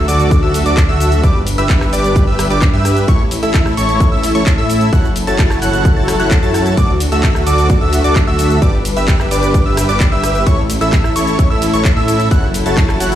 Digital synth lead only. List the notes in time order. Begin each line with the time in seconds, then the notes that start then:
0.08 D6
0.43 E6
0.66 D6
0.89 E6
1.24 D6
1.58 E6
1.93 D6
2.27 E6
2.50 D6
2.73 E6
3.08 C#6
3.43 E6
3.77 C#6
4.12 E6
4.35 C#6
4.58 E6
4.93 F#6
5.27 A6
5.62 F#6
5.97 A6
6.20 F#6
6.43 A6
6.77 D6
7.12 E6
7.47 D6
7.81 E6
8.04 D6
8.27 E6
8.62 D6
8.97 E6
9.31 D6
9.66 E6
9.89 D6
10.12 E6
10.47 C#6
10.81 E6
11.16 C#6
11.50 E6
11.74 C#6
11.97 E6
12.31 F#6
12.66 A6
13.00 F#6